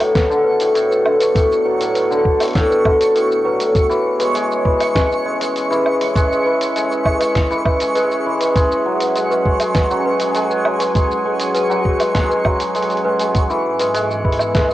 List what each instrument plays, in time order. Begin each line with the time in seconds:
Already playing: hammered dulcimer F#3 B3 E4, ambient pad B3 F#4 C#5, celesta B4, synth texture C#6
0.00 hammered dulcimer A2, open hi-hat, low woodblock
0.15 celesta B4, kick, snare, open hi-hat, shaker
0.30 hammered dulcimer D3, ambient pad D5, shaker
0.44 celesta B4
0.60 hammered dulcimer A2, open hi-hat, shaker
0.75 hammered dulcimer A2, open hi-hat, shaker
0.90 celesta B4, shaker
1.05 hammered dulcimer D3, low woodblock
1.19 celesta B4, open hi-hat, shaker
1.35 hammered dulcimer A2, kick, open hi-hat, shaker
1.52 shaker
1.65 hammered dulcimer F#3, celesta B4
1.80 hammered dulcimer A2, open hi-hat, shaker
1.94 celesta B4, open hi-hat, shaker
2.10 hammered dulcimer D3, shaker
2.25 kick
2.40 hammered dulcimer A2, celesta B4, open hi-hat, low woodblock, shaker
2.43 open hi-hat
2.45 open hi-hat
2.48 open hi-hat
2.51 open hi-hat
2.53 hammered dulcimer A2, kick, snare, open hi-hat
2.55 open hi-hat, shaker
2.70 celesta B4, shaker
2.85 hammered dulcimer D3, kick, low woodblock
3.01 open hi-hat, shaker
3.15 hammered dulcimer A2, celesta B4, open hi-hat, shaker
3.31 shaker
3.45 hammered dulcimer F#3, celesta B4
3.60 hammered dulcimer A2, open hi-hat, shaker
3.75 ambient pad C#4, kick, open hi-hat, shaker
3.87 hammered dulcimer E3, ambient pad G#4
3.91 celesta B4, shaker
4.20 hammered dulcimer G#3, celesta B4, open hi-hat, shaker
4.35 hammered dulcimer G#3, open hi-hat, shaker
4.52 shaker
4.65 hammered dulcimer E3, celesta B4, kick
4.80 ambient pad E5, open hi-hat, low woodblock, shaker
4.95 hammered dulcimer G#3, celesta B4, kick, snare, open hi-hat, shaker
5.12 shaker
5.25 hammered dulcimer G#3
5.41 hammered dulcimer G#3, celesta B4, open hi-hat, shaker
5.56 open hi-hat, shaker
5.71 hammered dulcimer E3, celesta B4, shaker
5.86 low woodblock
6.01 hammered dulcimer G#3, open hi-hat
6.16 hammered dulcimer G#3, celesta B4, kick, open hi-hat, shaker
6.32 shaker
6.45 hammered dulcimer E3, celesta B4
6.61 open hi-hat, shaker
6.76 hammered dulcimer G#3, open hi-hat, shaker
6.90 celesta B4, shaker
7.06 hammered dulcimer G#3, kick, low woodblock
7.19 hammered dulcimer G#3, celesta B4, open hi-hat, low woodblock, shaker
7.35 kick, snare, open hi-hat, shaker
7.51 hammered dulcimer E3, shaker
7.65 celesta B4, kick, low woodblock
7.80 hammered dulcimer G#3, open hi-hat, shaker
7.95 hammered dulcimer G#3, celesta B4, open hi-hat, shaker
8.11 shaker
8.26 hammered dulcimer E3
8.40 celesta B4, open hi-hat, shaker
8.55 ambient pad F#3, hammered dulcimer G#3, celesta B4, kick, open hi-hat, shaker
8.71 shaker
8.85 hammered dulcimer F#3
9.00 celesta B4, open hi-hat, shaker
9.15 hammered dulcimer G#3, open hi-hat, shaker
9.31 celesta B4, ambient pad G#5, shaker
9.46 hammered dulcimer G#3, kick
9.60 hammered dulcimer G#3, open hi-hat, low woodblock, shaker
9.75 celesta B4, kick, snare, open hi-hat, shaker
9.91 hammered dulcimer F#3, shaker
10.06 celesta B4
10.20 hammered dulcimer G#3, open hi-hat, shaker
10.35 hammered dulcimer G#3, open hi-hat, shaker
10.50 celesta B4, shaker
10.65 hammered dulcimer F#3, low woodblock
10.80 celesta B4, open hi-hat, shaker
10.95 hammered dulcimer G#3, kick, open hi-hat, shaker
11.11 shaker
11.25 hammered dulcimer G#3, celesta B4
11.40 hammered dulcimer G#3, open hi-hat, shaker
11.54 celesta B4, open hi-hat, shaker
11.70 hammered dulcimer F#3, shaker
11.85 kick
11.99 hammered dulcimer G#3, celesta B4, open hi-hat, low woodblock, shaker
12.15 hammered dulcimer G#3, kick, snare, open hi-hat, shaker
12.30 celesta B4, shaker
12.45 hammered dulcimer F#3, kick, low woodblock
12.60 open hi-hat, shaker
12.75 hammered dulcimer G#3, celesta B4, open hi-hat, shaker
12.82 open hi-hat
12.90 open hi-hat, shaker
12.97 open hi-hat
13.05 hammered dulcimer G#3, celesta B4
13.19 hammered dulcimer G#3, open hi-hat, shaker
13.35 ambient pad G#2, kick, open hi-hat, shaker
13.47 ambient pad E3, hammered dulcimer E3, celesta B4, shaker
13.60 ambient pad B3
13.70 ambient pad F#4
13.79 hammered dulcimer G#3, celesta B4, open hi-hat, shaker
13.94 hammered dulcimer G#3, open hi-hat, shaker
14.11 shaker
14.25 hammered dulcimer E3, celesta B4, kick
14.32 open hi-hat
14.39 low woodblock, shaker
14.55 hammered dulcimer G#3, celesta B4, kick, snare, open hi-hat, shaker
14.70 shaker